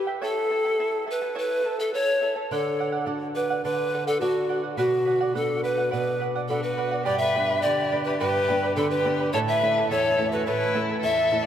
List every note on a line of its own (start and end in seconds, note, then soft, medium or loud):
0.07 0.21 E4 soft
0.07 0.22 B4 soft
0.07 0.22 G5 medium
0.22 0.50 E4 medium
0.22 0.50 A4 medium
0.22 1.05 A4 loud
0.22 0.50 C#5 medium
0.22 0.49 E5 medium
0.22 0.50 A5 medium
0.50 0.65 E4 medium
0.50 0.64 A4 medium
0.50 0.65 E5 medium
0.50 0.64 A5 medium
0.65 0.78 E4 soft
0.65 0.78 A4 medium
0.65 0.79 A5 medium
0.79 1.05 E4 medium
0.79 1.06 A4 medium
0.79 1.05 E5 medium
0.79 1.06 A5 medium
1.06 1.21 E4 medium
1.06 1.21 A4 medium
1.06 1.21 E5 medium
1.06 1.21 A5 medium
1.11 1.36 B4 medium
1.22 1.34 E4 soft
1.22 1.35 A4 soft
1.22 1.35 A5 medium
1.35 1.63 E4 medium
1.35 1.64 A4 medium
1.35 1.77 B4 loud
1.35 1.64 C#5 medium
1.35 1.63 E5 medium
1.35 1.65 A5 medium
1.64 1.79 E4 medium
1.64 1.79 A4 medium
1.64 1.79 E5 medium
1.64 1.78 A5 medium
1.79 1.93 E4 soft
1.79 1.92 A4 medium
1.79 1.94 A4 soft
1.79 1.93 A5 medium
1.94 2.20 E4 medium
1.94 2.21 A4 medium
1.94 2.33 C#5 loud
1.94 2.20 E5 medium
1.94 2.21 A5 medium
2.21 2.36 E4 medium
2.21 2.35 A4 medium
2.21 2.36 E5 medium
2.21 2.35 A5 medium
2.36 2.51 E4 soft
2.36 2.50 A4 soft
2.36 2.50 A5 soft
2.51 3.61 D3 medium
2.51 2.78 A4 medium
2.51 3.06 A4 medium
2.51 2.78 D5 medium
2.51 2.79 F#5 medium
2.79 2.93 A4 medium
2.79 2.93 D5 medium
2.79 2.91 F#5 medium
2.92 3.05 D5 soft
2.92 3.06 F#5 medium
3.06 3.62 D4 soft
3.06 3.62 F#4 soft
3.06 3.34 A4 medium
3.06 3.63 A4 medium
3.06 3.35 D5 medium
3.06 3.36 F#5 medium
3.35 3.50 A4 medium
3.35 3.62 B4 loud
3.35 3.50 D5 medium
3.35 3.49 F#5 medium
3.50 3.64 D5 soft
3.50 3.64 F#5 medium
3.64 4.75 D3 medium
3.64 3.92 A4 medium
3.64 4.04 B4 loud
3.64 3.93 D5 medium
3.64 3.93 F#5 medium
3.93 4.07 A4 medium
3.93 4.07 D5 medium
3.93 4.06 F#5 medium
4.07 4.20 A4 medium
4.07 4.20 D5 soft
4.07 4.21 F#5 medium
4.20 4.77 D4 soft
4.20 4.61 F#4 medium
4.20 4.77 F#4 soft
4.20 4.48 A4 medium
4.20 4.77 A4 medium
4.20 4.48 D5 medium
4.20 4.49 F#5 medium
4.49 4.64 A4 medium
4.49 4.64 D5 medium
4.49 4.62 F#5 medium
4.63 4.77 D5 soft
4.63 4.78 F#5 soft
4.77 5.88 B2 medium
4.77 5.37 F#4 medium
4.77 5.04 B4 medium
4.77 5.05 D5 medium
4.77 5.06 F#5 medium
5.05 5.20 B4 medium
5.05 5.21 D5 medium
5.05 5.19 F#5 medium
5.21 5.34 D5 soft
5.21 5.34 F#5 medium
5.34 5.90 B3 soft
5.34 5.91 D4 soft
5.34 5.91 F#4 medium
5.34 5.65 A4 medium
5.34 5.62 B4 medium
5.34 5.63 D5 medium
5.34 5.64 F#5 medium
5.63 5.78 B4 medium
5.63 5.92 B4 medium
5.63 5.77 D5 medium
5.63 5.76 F#5 medium
5.78 5.90 D5 soft
5.78 5.91 F#5 soft
5.91 7.03 B2 medium
5.91 6.19 B4 medium
5.91 6.24 B4 medium
5.91 6.20 D5 medium
5.91 6.20 F#5 medium
6.20 6.35 B4 medium
6.20 6.35 D5 medium
6.20 6.34 F#5 medium
6.36 6.49 D5 soft
6.36 6.50 F#5 medium
6.48 7.05 B3 soft
6.48 6.65 D4 medium
6.48 7.05 D4 soft
6.48 7.05 F#4 medium
6.48 6.64 A4 medium
6.48 6.76 B4 medium
6.48 6.77 D5 medium
6.48 6.77 F#5 medium
6.63 7.05 F#4 medium
6.63 7.04 B4 medium
6.77 6.92 B4 medium
6.77 6.92 D5 medium
6.77 6.90 F#5 medium
6.91 7.05 D5 soft
6.91 7.06 F#5 medium
7.05 7.62 G2 medium
7.05 7.34 G4 medium
7.05 7.19 G4 medium
7.05 7.34 B4 medium
7.05 7.18 D5 medium
7.05 7.34 D5 medium
7.05 7.33 G5 medium
7.05 7.35 B5 medium
7.18 7.64 B4 medium
7.18 7.63 E5 medium
7.35 7.81 B3 medium
7.35 7.81 D4 soft
7.35 7.81 G4 medium
7.35 7.49 B4 medium
7.35 7.49 D5 medium
7.35 7.49 G5 medium
7.35 7.48 B5 medium
7.49 7.63 B4 soft
7.49 7.63 D5 medium
7.49 7.63 B5 medium
7.62 8.19 D3 medium
7.62 8.05 G4 medium
7.62 7.91 B4 medium
7.62 8.03 D5 medium
7.62 7.92 D5 medium
7.62 7.91 G5 medium
7.62 7.92 B5 medium
7.92 8.38 B3 medium
7.92 8.38 D4 soft
7.92 8.38 G4 medium
7.92 8.06 B4 medium
7.92 8.06 D5 medium
7.92 8.06 G5 medium
7.92 8.05 B5 medium
8.04 8.19 G4 medium
8.04 8.18 B4 medium
8.04 8.20 D5 soft
8.04 8.20 B5 medium
8.08 8.20 B4 soft
8.19 8.76 G2 medium
8.19 8.73 G4 medium
8.19 8.49 G4 medium
8.19 8.73 B4 loud
8.19 8.47 B4 medium
8.19 8.48 D5 medium
8.19 8.47 G5 medium
8.19 8.48 B5 medium
8.48 8.95 B3 medium
8.48 8.95 D4 soft
8.48 8.95 G4 medium
8.48 8.63 B4 medium
8.48 8.62 D5 medium
8.48 8.63 G5 medium
8.48 8.62 B5 medium
8.63 8.76 B4 medium
8.63 8.77 D5 medium
8.63 8.77 B5 medium
8.76 9.32 D3 medium
8.76 8.91 D4 medium
8.76 8.90 A4 medium
8.76 9.04 B4 medium
8.76 9.05 D5 medium
8.76 9.04 G5 medium
8.76 9.06 B5 medium
8.90 9.31 G4 medium
8.90 9.30 B4 medium
9.05 9.28 B3 soft
9.05 9.28 D4 soft
9.05 9.28 G4 medium
9.05 9.19 B4 medium
9.05 9.19 D5 medium
9.05 9.20 G5 medium
9.05 9.18 B5 medium
9.20 9.33 B4 soft
9.20 9.34 D5 medium
9.20 9.34 B5 medium
9.33 9.89 A2 medium
9.33 9.62 E4 medium
9.33 9.40 A4 medium
9.33 9.62 A4 medium
9.33 9.39 C#5 loud
9.33 9.62 C#5 medium
9.33 9.62 E5 medium
9.33 9.62 A5 loud
9.48 9.88 B4 medium
9.48 9.88 E5 loud
9.63 10.08 A3 medium
9.63 10.08 C#4 soft
9.63 9.77 E4 medium
9.63 10.08 E4 medium
9.63 9.77 A4 medium
9.63 9.77 E5 medium
9.63 9.76 A5 medium
9.78 9.90 E4 soft
9.78 9.90 A4 medium
9.78 9.90 A5 medium
9.90 10.46 E2 medium
9.90 10.17 E4 medium
9.90 10.30 A4 medium
9.90 10.17 A4 medium
9.90 10.30 C#5 loud
9.90 10.16 E5 medium
9.90 10.17 A5 medium
10.17 10.64 A3 medium
10.17 10.64 C#4 soft
10.17 10.32 E4 medium
10.17 10.64 E4 medium
10.17 10.32 A4 medium
10.17 10.32 E5 medium
10.17 10.31 A5 medium
10.32 10.46 E4 soft
10.32 10.46 F#4 medium
10.32 10.47 A4 medium
10.32 10.45 B4 medium
10.32 10.47 A5 medium
10.46 11.02 A2 medium
10.46 11.00 E4 medium
10.46 10.73 E4 medium
10.46 10.74 A4 medium
10.46 10.79 B4 loud
10.46 10.76 C#5 medium
10.46 10.73 E5 medium
10.46 10.74 A5 medium
10.74 11.20 A3 medium
10.74 11.20 C#4 medium
10.74 10.89 E4 medium
10.74 11.21 E4 medium
10.74 10.89 A4 medium
10.74 10.89 E5 medium
10.74 10.88 A5 medium
10.89 11.01 E4 soft
10.89 11.02 A4 soft
10.89 11.02 A5 medium
11.02 11.46 E2 medium
11.02 11.31 E4 medium
11.02 11.44 A4 medium
11.02 11.31 A4 medium
11.02 11.30 E5 medium
11.02 11.46 E5 loud
11.02 11.31 A5 medium
11.31 11.46 A3 soft
11.31 11.46 C#4 soft
11.31 11.45 E4 medium
11.31 11.46 E4 medium
11.31 11.44 A4 medium
11.31 11.46 E5 medium
11.31 11.44 A5 medium
11.43 11.46 D5 medium